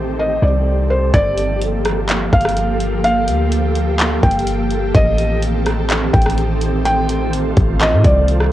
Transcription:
Already playing: A1 D#3 A3 C4 G4 A4 C5
0.19 D#5
0.42 C2 D5
0.90 C5
1.14 G1 F3 A#3 G4 A4 D5 F5, kick, closed hi-hat
1.38 closed hi-hat
1.62 closed hi-hat
1.85 cross-stick, closed hi-hat
2.09 clap, closed hi-hat
2.33 G1 F5, kick, closed hi-hat
2.41 closed hi-hat
2.45 cross-stick, closed hi-hat
2.57 closed hi-hat
2.80 closed hi-hat
3.04 F5, closed hi-hat
3.28 D2, closed hi-hat
3.52 closed hi-hat
3.75 closed hi-hat
4.00 clap, closed hi-hat
4.23 G1 G5, kick, closed hi-hat
4.31 closed hi-hat
4.39 closed hi-hat
4.47 closed hi-hat
4.71 closed hi-hat
4.95 A1 D#3 A3 C4 G4 C5 D#5, kick, closed hi-hat
5.18 closed hi-hat
5.42 closed hi-hat
5.66 cross-stick, closed hi-hat
5.90 clap, closed hi-hat
6.13 A1 G5, kick, closed hi-hat
6.22 closed hi-hat
6.26 cross-stick, closed hi-hat
6.38 closed hi-hat
6.61 closed hi-hat
6.85 F4 G5, closed hi-hat
7.09 closed hi-hat
7.33 closed hi-hat
7.56 A1, kick, closed hi-hat
7.81 D#5, clap, closed hi-hat
7.92 A2
8.04 C2 D5, kick, closed hi-hat
8.28 closed hi-hat
8.40 cross-stick

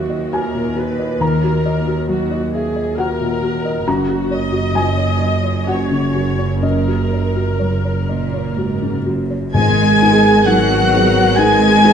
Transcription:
Already playing: D#2 F#3 F#4 D#5 E5 F#5
0.10 D#5
0.33 F#4 A#4 G#5
0.55 A#2
0.77 F#4 B4
0.99 D#5
1.21 D#2 A#4 A#5
1.44 F#4
1.65 D#5
1.87 F#4
2.09 F#3 F#4
2.31 D#5
2.53 G#4 E5
2.76 D#5
2.98 F#4 A#4 F#5
3.21 A#2
3.43 F#4
3.65 D#5
3.87 F#1 F#2 F#4 A#5
4.09 F#4
4.31 C#5 D#5
4.52 F#4
4.75 F#3 G#5
4.97 C#5
5.20 D#5
5.44 C#5
5.67 F#4 C#5 F#5
5.91 C#3
6.15 F#4
6.39 C#5
6.62 F#2 A#4 D#5
6.88 F#4
7.13 C#5
7.36 F#4
7.59 F#2 F#3 C#5
7.85 C#5
8.08 A#2 D#5
8.34 C#5
8.58 G#2 F#4
8.82 C#3
9.06 F#2 F#4
9.30 C#5
9.53 G#1 G#2 G#3 B3 G#4 A#4 G#5 G#6
10.02 B3 D#4 G#4
10.46 F#3 B3 D#4 F#4 G#4 F#5 F#6
10.93 B3 D#4 G#4
11.36 G#3 B3 D#4 G#4 G#5 G#6
11.84 B3 D#4 G#4

